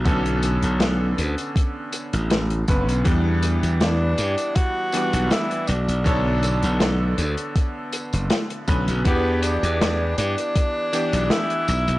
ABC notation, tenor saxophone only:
X:1
M:4/4
L:1/8
Q:"Swing 16ths" 1/4=80
K:Edor
V:1 name="Tenor saxophone"
z8 | z2 D2 F2 E D- | D3 z4 z | B, D2 D3 E2 |]